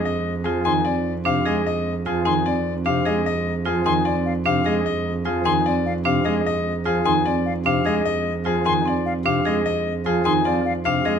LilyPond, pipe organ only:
\new Staff \with { instrumentName = "Pipe organ" } { \clef bass \time 4/4 \key f \dorian \tempo 4 = 150 r4 f8 ees8 r4 c8 aes8 | r4 f8 ees8 r4 c8 aes8 | r4 f8 ees8 r4 c8 aes8 | r4 f8 ees8 r4 c8 aes8 |
r4 f8 ees8 r4 c8 aes8 | r4 f8 ees8 r4 c8 aes8 | r4 f8 ees8 f8 r8 c8 aes8 | }